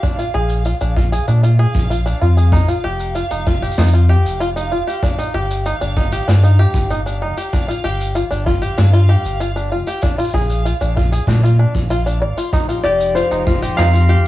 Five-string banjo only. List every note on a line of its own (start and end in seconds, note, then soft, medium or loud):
0.03 0.17 D4 medium
0.19 0.33 F4 medium
0.34 0.64 G#4 medium
0.66 0.74 F4 medium
0.81 0.96 D4 medium
0.97 1.11 F4 medium
1.12 1.26 G#4 medium
1.28 1.42 D4 medium
1.43 1.58 F4 medium
1.59 1.89 G#4 medium
1.90 1.99 F4 medium
2.06 2.21 D4 medium
2.22 2.36 F4 medium
2.37 2.51 G#4 medium
2.53 2.67 D#4 medium
2.68 2.83 F4 medium
2.84 3.14 G4 medium
3.15 3.24 F4 medium
3.31 3.46 D#4 medium
3.47 3.61 F4 medium
3.62 3.76 G4 medium
3.78 3.92 D#4 medium
3.93 4.08 F4 medium
4.09 4.39 G4 medium
4.40 4.49 F4 medium
4.56 4.71 D#4 medium
4.72 4.86 F4 medium
4.87 5.01 G4 medium
5.03 5.17 D4 medium
5.18 5.33 D#4 medium
5.34 5.64 G4 medium
5.66 5.74 D#4 medium
5.81 5.96 D4 medium
5.97 6.11 D#4 medium
6.12 6.26 G4 medium
6.28 6.42 D4 medium
6.43 6.58 D#4 medium
6.59 6.89 G4 medium
6.90 6.99 D#4 medium
7.06 7.21 D4 medium
7.22 7.36 D#4 medium
7.37 7.51 G4 medium
7.53 7.67 D4 medium
7.68 7.83 F4 medium
7.84 8.14 G4 medium
8.15 8.24 F4 medium
8.31 8.46 D4 medium
8.46 8.61 F4 medium
8.62 8.76 G4 medium
8.78 8.92 D4 medium
8.93 9.08 F4 medium
9.09 9.39 G4 medium
9.40 9.49 F4 medium
9.56 9.71 D4 medium
9.72 9.86 F4 medium
9.87 10.01 G4 medium
10.03 10.17 D4 medium
10.18 10.33 F4 medium
10.34 10.64 G#4 medium
10.65 10.74 F4 medium
10.81 10.96 D4 medium
10.96 11.11 F4 medium
11.12 11.26 G#4 medium
11.28 11.42 D4 medium
11.43 11.58 F4 medium
11.59 11.73 D4 medium
11.90 12.04 F4 medium
12.06 12.21 D4 medium
12.22 12.36 D5 medium
12.38 12.51 F4 medium
12.53 12.67 D#4 medium
12.69 12.83 F4 medium
12.84 13.14 G4 medium
13.16 13.24 F4 medium
13.31 13.46 D#4 medium
13.47 13.61 F4 medium
13.62 13.76 G4 medium
13.78 13.92 D#4 medium
13.94 14.08 F4 medium
14.09 14.28 G4 medium